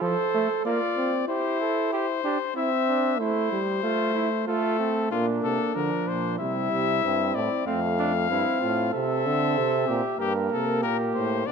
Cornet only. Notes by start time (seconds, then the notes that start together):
0.02 C5
0.65 D5
1.29 C5
1.93 C5
2.57 E5
3.21 C5
4.48 A4
5.11 F4
5.43 A4
5.75 A#4
6.08 C5
6.39 E5
7.35 D5
7.67 F5
8.94 E5
10.20 G4
10.52 A4
10.83 A#4
11.14 C5
11.46 D5